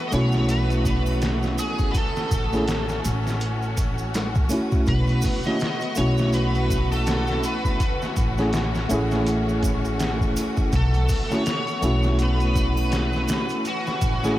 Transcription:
Already playing: E3 A3 B3 F#4
0.08 A3 D#5, maracas
0.12 B1 C#4 E4 F#4 C#5, closed hi-hat
0.32 snare, maracas
0.49 B4, closed hi-hat, maracas
0.70 closed hi-hat, maracas
0.85 kick, closed hi-hat, maracas
1.06 triangle, maracas
1.22 snare, closed hi-hat, maracas
1.43 snare, maracas
1.58 G#4, closed hi-hat, maracas
1.79 kick, maracas
1.91 B4, kick, closed hi-hat, maracas
1.95 C#4 F#4 A4
2.16 snare, maracas
2.31 A1, kick, closed hi-hat, maracas
2.53 A3 C#4 E4 G#4, snare, maracas
2.68 snare, closed hi-hat, maracas
2.89 snare, maracas
3.04 A1, closed hi-hat, maracas
3.27 snare, maracas
3.40 closed hi-hat, maracas
3.62 maracas
3.77 kick, closed hi-hat, maracas
3.98 maracas
4.14 snare, closed hi-hat, maracas
4.35 kick, maracas
4.49 A3 C#4 E4, closed hi-hat, triangle, maracas
4.54 F#4
4.71 kick, maracas
4.86 B1 E3 A3 B3 B4, kick, closed hi-hat, maracas
5.07 closed hi-hat, maracas
5.22 kick, open hi-hat, maracas
5.43 A3 C#4 E4 D#5, snare, maracas
5.48 F#4
5.60 snare, closed hi-hat, maracas
5.81 closed hi-hat, maracas
5.95 B1 A3 C#4 E4 C#5, closed hi-hat, maracas
6.01 F#4
6.18 snare, maracas
6.33 B4, closed hi-hat, maracas
6.55 closed hi-hat, maracas
6.70 kick, closed hi-hat, maracas
6.92 A4, triangle, maracas
7.07 snare, closed hi-hat, maracas
7.27 snare, maracas
7.43 B4, closed hi-hat, maracas
7.65 kick, maracas
7.80 A3 C#4, kick, closed hi-hat, maracas
8.02 snare, maracas
8.16 A1, kick, closed hi-hat, maracas
8.38 A3 C#4 E4 G#4, snare, maracas
8.53 snare, closed hi-hat, maracas
8.75 snare, maracas
8.89 A1 A3 C#4 E4, closed hi-hat, maracas
8.93 G#4
9.11 snare, maracas
9.26 closed hi-hat, maracas
9.49 maracas
9.63 kick, closed hi-hat, maracas
9.85 maracas
10.00 snare, closed hi-hat, maracas
10.21 kick, maracas
10.36 closed hi-hat, triangle, maracas
10.57 kick, maracas
10.72 B1 B3 A4, kick, closed hi-hat, maracas
10.94 closed hi-hat, maracas
11.09 kick, open hi-hat, maracas
11.31 A3 C#4 E4 F#4 C#5, snare, maracas
11.46 snare, closed hi-hat, maracas
11.67 closed hi-hat, maracas
11.82 B1 A3 C#4 E4, closed hi-hat, maracas
11.86 F#4
12.03 snare, maracas
12.19 closed hi-hat, maracas
12.23 B4
12.40 closed hi-hat, maracas
12.55 kick, closed hi-hat, maracas
12.77 triangle, maracas
12.92 snare, closed hi-hat, maracas
13.13 snare, maracas
13.28 snare, closed hi-hat, maracas
13.49 closed hi-hat, maracas
13.65 E3 C#4 F#4, closed hi-hat, maracas
13.87 snare, maracas
14.01 A1, kick, closed hi-hat, maracas
14.23 A3 C#4 E4 G#4, snare, maracas

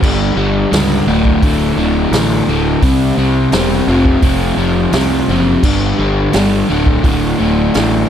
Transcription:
0.02 G1 G2 D3 G3, kick, crash
0.36 G1 G2 D3 G3
0.71 C#2 G2 D3 G3, snare, open hi-hat
1.07 D1 D2 A2 D3
1.25 kick
1.42 D1 D2 A2 D3, kick, open hi-hat
1.76 D1 D2 A2 D3
2.12 A1 D2 A2 D3, snare, open hi-hat
2.47 D1 D2 A2 D3
2.82 C2 C3 G3 C4, kick, open hi-hat
3.17 C2 C3 G3 C4
3.52 E1 C3 G3 C4, snare, open hi-hat
3.87 F1 F2 C3 F3
4.05 kick
4.22 F1 F2 C3 F3, kick, open hi-hat
4.57 F1 F2 C3 F3
4.93 C2 F2 C3 F3, snare, open hi-hat
5.28 F#1 F2 C3 F3
5.63 G1 G2 D3 G3, kick, crash
5.98 G1 G2 D3 G3
6.33 G1 G2 D3 G3, snare, open hi-hat
6.69 D1 D2 A2 D3
6.86 kick
7.03 D1 D2 A2 D3, kick, open hi-hat
7.40 D1 D2 A2 D3
7.74 A1 D2 A2 D3, snare, open hi-hat

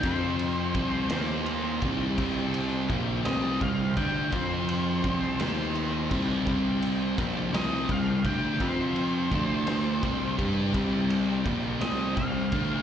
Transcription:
Already playing: C4
0.03 F2 F3 C4 F4 C5 F5 C6, kick, ride
0.39 ride
0.74 C2 C3 G3 C4 G4 C5 G5, kick, ride
1.09 D#2 D#3 A#3 D#4 A#5, snare, ride
1.46 ride
1.82 C2 C3 G3 C4 G4 G5, kick, ride
2.18 C2 C3 G3 C4, kick, ride
2.54 ride
2.89 A#1 A#2 F3 A#3, kick, ride
3.25 C2 C3 G3 C4 D#5, snare, ride
3.61 C2 C3 G3 F5, kick, ride
3.97 D2 D3 A3 D4 G5, kick, ride
4.32 F2 F3 C4 F4 C5 F5 C6, kick, ride
4.69 ride
5.03 C2 C3 G3 C4 G4 C5 G5, kick, ride
5.40 D#2 D#3 A#3 D#4 A#5, snare, ride
5.75 ride
6.10 C2 C3 G3 C4 G4 G5, kick, crash
6.46 C2 C3 G3 C4, kick
6.82 ride
7.18 A#1 A#2 F3 A#3, kick, ride
7.53 C2 C3 G3 C4 D#5, snare, ride
7.89 C2 C3 G3 F5, kick, ride
8.24 D2 D3 A3 D4 G5, kick, ride
8.59 F2 F3 C4 F4 C5 F5 C6, kick, ride
8.96 ride
9.31 D2 D3 A3 D4 D5 A5, kick, ride
9.67 snare, ride
10.03 C2 C3 G3 C4 G4 C5 G5, kick, ride
10.38 G2 G3 D4 G4, kick, ride
10.73 C2 C3 G3 C4, kick, ride
11.10 ride
11.45 A#1 A#2 F3 A#3, kick, ride
11.81 C2 C3 G3 C4 D#5, snare, ride
12.16 C2 C3 G3 F5, kick, ride
12.52 D2 D3 A3 D4, kick, ride

